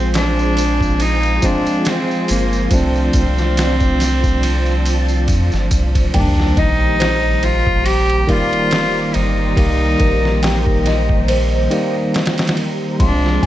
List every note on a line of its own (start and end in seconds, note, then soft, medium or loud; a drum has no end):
0.00 1.40 A#1 medium
0.00 1.39 F3 medium
0.00 1.39 G#3 medium
0.00 0.12 C4 loud
0.00 1.40 C4 medium
0.00 1.40 F4 medium
0.00 6.11 F4 medium
0.00 2.69 G#4 medium
0.00 6.10 C5 medium
0.00 2.69 G#5 medium
0.14 1.03 D4 loud
0.14 snare loud
0.14 ride medium
0.14 tambourine soft
0.39 tambourine soft
0.57 ride medium
0.57 tambourine medium
0.81 kick medium
0.81 tambourine soft
1.00 1.46 D#4 loud
1.00 ride medium
1.00 tambourine soft
1.23 ride soft
1.23 tambourine soft
1.42 2.67 F3 loud
1.42 2.67 G#3 medium
1.42 2.68 C4 medium
1.42 1.89 D4 loud
1.42 2.69 F4 loud
1.42 kick loud
1.42 ride medium
1.42 tambourine medium
1.67 ride soft
1.67 tambourine soft
1.85 2.32 C4 loud
1.85 snare loud
1.85 ride medium
1.85 tambourine soft
2.11 tambourine soft
2.28 2.68 G1 loud
2.28 2.75 A#3 medium
2.28 ride medium
2.28 tambourine medium
2.53 tambourine soft
2.71 3.10 C2 medium
2.71 4.81 F3 medium
2.71 4.82 A3 medium
2.71 5.73 C4 loud
2.71 4.82 C4 medium
2.71 4.83 D4 loud
2.71 6.11 D5 medium
2.71 6.11 A5 medium
2.71 kick loud
2.71 ride medium
2.71 tambourine medium
2.96 tambourine soft
3.13 5.30 C2 medium
3.13 kick medium
3.13 ride medium
3.13 tambourine medium
3.38 snare soft
3.38 tambourine soft
3.57 snare loud
3.57 ride medium
3.57 tambourine soft
3.80 kick medium
3.80 tambourine soft
4.00 snare soft
4.00 ride medium
4.00 tambourine medium
4.24 kick medium
4.24 tambourine soft
4.43 ride medium
4.43 tambourine soft
4.66 tambourine soft
4.86 ride medium
4.86 tambourine medium
5.08 tambourine soft
5.28 5.50 F2 medium
5.28 kick medium
5.28 ride medium
5.28 tambourine medium
5.52 5.70 G1 loud
5.52 snare soft
5.52 tambourine soft
5.71 6.10 C2 medium
5.71 kick medium
5.71 ride medium
5.71 tambourine medium
5.95 kick medium
5.95 ride medium
5.95 tambourine soft
6.14 6.53 C2 medium
6.14 8.24 D#3 medium
6.14 8.25 G3 medium
6.14 8.25 A#3 medium
6.14 6.61 D4 loud
6.14 12.96 G4 medium
6.14 12.96 C5 medium
6.14 6.56 G5 loud
6.14 12.96 A#5 medium
6.14 kick loud
6.14 ride loud
6.14 sub drop medium
6.40 snare soft
6.57 8.25 A#1 medium
6.57 7.45 D#4 loud
6.57 6.96 D#5 medium
6.57 kick medium
6.57 ride medium
7.00 8.68 C5 medium
7.00 snare loud
7.00 ride medium
7.43 7.88 F4 loud
7.43 ride medium
7.67 kick medium
7.86 8.31 G4 loud
7.86 ride medium
8.10 ride soft
8.27 9.52 D#3 medium
8.27 9.53 G3 medium
8.27 9.53 A#3 loud
8.27 9.16 F4 loud
8.27 9.54 D5 loud
8.27 kick loud
8.27 ride medium
8.53 ride soft
8.71 snare loud
8.71 ride medium
9.14 9.54 G1 loud
9.14 10.86 D#4 medium
9.14 ride medium
9.56 9.96 C2 loud
9.56 11.67 D#3 medium
9.56 11.67 G3 medium
9.56 11.68 A#3 medium
9.56 kick loud
9.56 ride medium
10.00 11.68 A#1 medium
10.00 10.41 A#4 medium
10.00 kick medium
10.00 ride medium
10.25 snare soft
10.43 10.84 G5 medium
10.43 snare loud
10.43 ride medium
10.66 kick medium
10.86 11.25 D#5 medium
10.86 snare soft
10.86 ride medium
11.09 kick medium
11.28 12.97 C5 loud
11.28 ride medium
11.71 12.95 D#3 medium
11.71 12.96 G3 medium
11.71 12.96 A#3 medium
11.71 ride medium
12.14 snare medium
12.14 ride medium
12.26 snare medium
12.26 ride medium
12.38 snare medium
12.38 ride medium
12.47 snare medium
12.47 ride medium
12.57 ride medium
12.99 13.39 C2 loud
12.99 13.46 F3 medium
12.99 13.46 G#3 medium
12.99 13.46 C4 medium
12.99 13.46 F4 medium
12.99 13.46 C5 medium
12.99 13.46 F5 medium
12.99 13.46 C6 medium
12.99 13.41 C6 loud
12.99 kick loud
12.99 ride medium
13.04 13.46 D4 medium
13.26 snare soft
13.43 13.46 G#5 medium
13.43 kick loud
13.43 ride medium